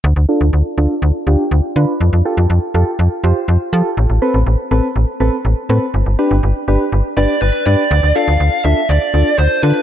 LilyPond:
<<
  \new Staff \with { instrumentName = "Lead electric guitar" } { \time 4/4 \key d \dorian \tempo 4 = 122 r1 | r1 | r1 | r2 r8 d''8 b'8 d''8~ |
d''8 f''4 e''8 d''4 c''8 b'8 | }
  \new Staff \with { instrumentName = "Synth keys" } { \time 4/4 \key d \dorian r8 <d' f' a'>8 r8 <d' f' a'>8 r8 <d' f' g'>8 r8 <d' f' b'>8 | r8 <f' g' a'>8 r8 <f' g' a'>8 r8 <f' g' c''>8 r8 <f' g' a'>8 | r8 <c' a' b'>8 r8 <c' a' b'>8 r8 <c' a' b'>8 r8 <c' a' b'>8 | r8 <d' g' b'>8 r8 <d' g' b'>8 r8 <d' g' b'>8 r8 <d' g' b'>8 |
r8 <d' f' a'>8 r8 <d' f' a'>8 r8 <d' f' a'>8 r8 <d' f' a'>8 | }
  \new Staff \with { instrumentName = "FM bass" } { \clef bass \time 4/4 \key d \dorian d,16 d,16 r16 d,16 d,16 r16 d,16 r16 d,16 r16 d,16 r16 d,16 r16 d16 r16 | f,16 f,16 r16 f,16 f,16 r16 f,16 r16 f,16 r16 f,16 r16 f,16 r16 f16 r16 | a,,16 a,,16 r16 a,,16 a,,16 r16 a,,16 r16 a,,16 r16 a,,16 r16 a,,16 r16 a,16 r16 | g,,16 g,,16 r16 g,,16 g,,16 r16 g,,16 r16 g,,16 r16 g,,16 r16 g,,16 r16 g,16 r16 |
d,16 d,16 r16 d,16 d,16 r16 d,16 r16 d,16 r16 d,16 r16 d,16 r16 d16 r16 | }
>>